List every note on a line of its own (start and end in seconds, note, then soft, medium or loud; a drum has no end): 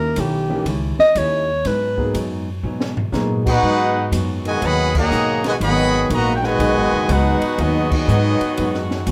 0.00 0.16 D#2 medium
0.00 0.14 A#3 medium
0.00 0.14 C#4 medium
0.00 0.14 D#4 medium
0.00 0.13 E4 medium
0.00 0.14 G4 medium
0.00 0.21 A#4 medium
0.16 0.65 B1 loud
0.16 0.51 D#3 medium
0.16 0.51 G3 medium
0.16 0.51 C#4 medium
0.16 0.52 E4 medium
0.16 0.68 G4 medium
0.16 hi-hat pedal medium
0.16 ride medium
0.49 0.65 E3 medium
0.49 0.65 A#3 medium
0.49 0.65 C#4 medium
0.49 0.65 D#4 medium
0.49 0.65 G4 medium
0.65 0.96 C#2 medium
0.65 1.00 D#3 soft
0.65 1.01 G3 medium
0.65 1.01 C#4 soft
0.65 1.02 E4 medium
0.65 ride medium
0.98 1.19 D#5 loud
0.98 muted upright bass stroke soft
0.98 snare medium
1.15 1.63 D#2 medium
1.15 1.50 D#3 medium
1.15 1.51 G3 medium
1.15 1.51 C#4 medium
1.15 1.51 E4 medium
1.15 1.68 C#5 loud
1.15 hi-hat pedal medium
1.15 ride medium
1.65 2.13 G#2 loud
1.65 1.99 G#2 soft
1.65 2.00 F#3 soft
1.65 2.00 B3 soft
1.65 2.01 D#4 medium
1.65 2.15 B4 loud
1.65 snare soft
1.65 ride medium
1.98 2.13 F#3 medium
1.98 2.13 A#3 medium
1.98 2.13 B3 medium
1.98 2.13 D#4 medium
1.98 2.13 G#4 medium
1.98 kick medium
2.14 2.62 F#2 loud
2.14 2.48 G#2 medium
2.14 2.49 F#3 medium
2.14 2.49 B3 medium
2.14 2.49 D#4 medium
2.14 hi-hat pedal medium
2.14 ride medium
2.63 2.98 G#2 medium
2.63 3.12 B2 medium
2.63 2.98 F#3 medium
2.63 2.99 B3 medium
2.63 2.99 D#4 medium
2.80 snare medium
2.97 floor tom medium
3.12 3.47 G#2 medium
3.12 3.61 A#2 loud
3.12 3.42 F#3 medium
3.12 3.48 F#3 medium
3.12 3.42 A#3 medium
3.12 3.43 B3 medium
3.12 3.48 B3 medium
3.12 3.43 D#4 medium
3.12 3.48 D#4 medium
3.12 3.43 G#4 medium
3.12 snare medium
3.12 hi-hat pedal medium
3.45 4.08 B3 loud
3.45 4.08 D#4 loud
3.45 4.09 D#4 loud
3.45 4.08 F#4 loud
3.45 4.09 G#4 loud
3.45 4.09 B4 loud
3.45 4.09 F#5 loud
3.45 kick medium
3.45 crash medium
3.62 3.97 G#2 soft
3.62 4.11 G#2 medium
3.62 9.11 D#3 medium
3.62 9.11 F#3 medium
3.62 3.97 F#3 medium
3.62 9.11 G#3 medium
3.62 3.98 B3 soft
3.62 3.98 D#4 medium
3.62 9.11 F#4 loud
4.12 4.60 F#2 medium
4.12 4.46 G#2 medium
4.12 4.46 F#3 medium
4.12 4.47 B3 medium
4.12 4.47 D#4 medium
4.12 hi-hat pedal medium
4.12 ride medium
4.45 4.61 B2 medium
4.45 4.61 D#3 medium
4.45 4.61 G#3 medium
4.45 4.62 F#4 medium
4.45 4.62 B4 medium
4.45 4.62 D#5 medium
4.45 4.62 G#5 loud
4.45 ride medium
4.62 5.10 D#2 medium
4.62 4.96 G#2 medium
4.62 4.95 D#3 loud
4.62 4.94 F#3 medium
4.62 4.97 F#3 medium
4.62 4.95 B3 loud
4.62 4.97 B3 medium
4.62 4.97 D#4 medium
4.62 4.96 G#4 loud
4.62 4.96 D#5 loud
4.62 4.96 F#5 loud
4.62 4.96 B5 loud
4.62 ride medium
4.95 5.41 D#3 medium
4.95 5.41 F#3 loud
4.95 5.41 A#3 loud
4.95 5.42 G#4 loud
4.95 5.42 D#5 loud
4.95 5.42 F#5 medium
4.95 5.42 A#5 loud
4.95 kick loud
4.95 crash loud
5.10 5.59 B1 loud
5.10 5.45 G#2 medium
5.10 5.45 F#3 medium
5.10 5.46 B3 medium
5.10 5.46 D#4 medium
5.10 hi-hat pedal medium
5.44 5.52 B2 medium
5.44 5.52 D#3 medium
5.44 5.52 G#3 loud
5.44 5.54 F#4 medium
5.44 5.54 B4 medium
5.44 5.54 D#5 medium
5.44 5.54 G#5 medium
5.44 snare medium
5.44 ride medium
5.60 6.08 G#1 medium
5.60 5.94 G#2 medium
5.60 6.08 D#3 loud
5.60 5.95 F#3 soft
5.60 6.08 F#3 loud
5.60 5.95 B3 medium
5.60 6.08 B3 loud
5.60 5.96 D#4 medium
5.60 6.08 G#4 loud
5.60 6.08 D#5 loud
5.60 6.08 F#5 loud
5.60 6.08 B5 loud
5.60 ride medium
6.10 6.58 A#1 loud
6.10 6.44 G#2 medium
6.10 6.44 F#3 medium
6.10 6.34 A#3 medium
6.10 6.45 B3 medium
6.10 6.45 D#4 medium
6.10 6.35 B4 loud
6.10 6.35 A#5 loud
6.10 hi-hat pedal medium
6.10 ride medium
6.14 6.35 F#4 loud
6.14 6.35 D#5 loud
6.36 6.44 G5 medium
6.43 7.09 B2 loud
6.43 7.10 D#3 loud
6.43 7.09 G#3 loud
6.43 7.11 F#4 loud
6.43 7.11 B4 loud
6.43 7.10 D#5 medium
6.43 7.10 G#5 loud
6.43 snare soft
6.58 6.76 B1 medium
6.58 6.93 G#2 medium
6.58 6.94 F#3 medium
6.58 6.94 B3 medium
6.58 6.95 D#4 medium
6.58 ride medium
6.76 6.92 G#1 medium
6.93 7.08 F#1 medium
7.08 7.39 C#2 loud
7.08 7.43 G#2 medium
7.08 7.44 F#3 medium
7.08 7.59 B3 medium
7.08 7.44 B3 medium
7.08 7.59 D#4 medium
7.08 7.44 D#4 medium
7.08 7.60 D#4 medium
7.08 7.59 F#4 medium
7.08 7.60 G#4 medium
7.08 7.60 B4 medium
7.08 7.60 F#5 loud
7.08 hi-hat pedal medium
7.08 ride medium
7.41 muted upright bass stroke soft
7.41 ride medium
7.58 8.06 D#2 loud
7.58 7.93 G#2 soft
7.58 7.94 F#3 soft
7.58 7.91 F#3 medium
7.58 7.91 B3 medium
7.58 7.94 B3 medium
7.58 7.93 B3 medium
7.58 7.90 D#4 medium
7.58 7.94 D#4 medium
7.58 7.93 F#4 medium
7.58 7.92 G#4 medium
7.58 7.92 D#5 loud
7.58 ride medium
7.91 8.87 F#3 medium
7.91 8.87 B3 medium
7.91 8.88 B3 medium
7.91 8.86 D#4 medium
7.91 8.88 F#4 medium
7.91 8.88 G#4 medium
7.91 8.88 D#5 loud
7.91 kick loud
7.91 crash loud
8.08 8.38 G#2 medium
8.08 8.42 G#2 medium
8.08 8.43 F#3 medium
8.08 8.43 B3 medium
8.08 8.43 D#4 medium
8.08 hi-hat pedal medium
8.41 muted upright bass stroke soft
8.41 ride medium
8.57 9.06 F#2 medium
8.57 8.92 G#2 medium
8.57 8.92 F#3 medium
8.57 8.93 B3 medium
8.57 8.93 D#4 medium
8.57 ride medium
8.74 snare soft
8.91 snare soft
9.06 9.11 C#2 loud
9.06 9.11 G#2 medium
9.06 9.11 F#3 medium
9.06 9.11 B3 medium
9.06 hi-hat pedal medium
9.06 ride medium